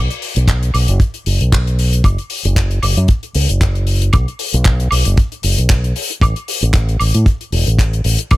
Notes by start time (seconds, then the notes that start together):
0.11 closed hi-hat
0.22 open hi-hat
0.36 B1, closed hi-hat
0.48 kick, clap, closed hi-hat
0.63 closed hi-hat
0.74 B1, open hi-hat, high woodblock
0.88 F#1, closed hi-hat
1.00 kick, closed hi-hat
1.14 closed hi-hat
1.26 F#1, open hi-hat
1.41 B1, closed hi-hat
1.52 kick, clap, closed hi-hat
1.67 closed hi-hat
1.79 open hi-hat
1.93 closed hi-hat
2.04 F#1, kick, closed hi-hat, high woodblock
2.18 closed hi-hat
2.30 open hi-hat
2.45 F#1, closed hi-hat
2.56 kick, clap, closed hi-hat
2.71 closed hi-hat
2.83 F#1, open hi-hat, high woodblock
2.97 F#2, closed hi-hat
3.08 kick, closed hi-hat
3.23 closed hi-hat
3.35 C#2, open hi-hat
3.49 F#1, closed hi-hat
3.61 kick, clap, closed hi-hat
3.75 closed hi-hat
3.87 open hi-hat
4.02 closed hi-hat
4.13 B1, kick, closed hi-hat, high woodblock
4.28 closed hi-hat
4.39 open hi-hat
4.54 B1, closed hi-hat
4.65 kick, clap, closed hi-hat
4.80 closed hi-hat
4.91 B1, open hi-hat, high woodblock
5.05 F#1, closed hi-hat
5.17 kick, closed hi-hat
5.32 closed hi-hat
5.43 F#1, open hi-hat
5.58 B1, closed hi-hat
5.70 kick, clap, closed hi-hat
5.84 closed hi-hat
5.96 open hi-hat
6.10 closed hi-hat
6.21 A1, kick, closed hi-hat, high woodblock
6.36 closed hi-hat
6.48 open hi-hat
6.62 A1, closed hi-hat
6.73 kick, clap, closed hi-hat
6.89 closed hi-hat
7.00 A1, open hi-hat, high woodblock
7.14 A2, closed hi-hat
7.26 kick, closed hi-hat
7.41 closed hi-hat
7.52 E1, open hi-hat
7.66 A1, closed hi-hat
7.79 kick, clap, closed hi-hat
7.93 closed hi-hat
8.04 A1, open hi-hat
8.19 closed hi-hat
8.31 B1, kick, closed hi-hat, high woodblock